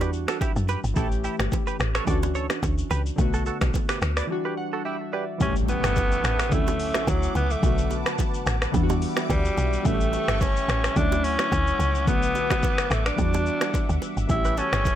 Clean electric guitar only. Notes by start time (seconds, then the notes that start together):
0.01 G4 B4
0.28 F#4 A4
0.41 E4 G4
0.69 G4 B4
0.97 E4 A4
1.24 E4 G4
1.67 G4 B4
1.95 A4 C#5
2.07 A4 D5
2.35 A4 C#5
2.91 G4 B4
3.34 F#4 A4
3.46 F#4 A4
3.89 G4 B4
4.17 B4 D5
4.45 G4 B4
4.73 F#4 A4
4.85 E4 G4
5.13 G4 B4
14.45 G4 B4
14.58 F#4 A4